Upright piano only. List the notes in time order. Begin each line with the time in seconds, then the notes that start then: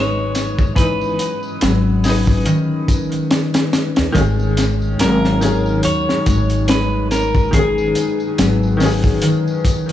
Already playing: E3 D#4 B4
0.75 E3 D#4
0.83 B4
2.05 D#4
2.09 B4
4.12 D#3
4.16 C#4
4.21 G#4
5.41 D#3 C#4
5.45 G#4
7.51 D#3 C#4
7.59 G#4
8.77 D#3
8.81 C#4 G#4
9.86 D#3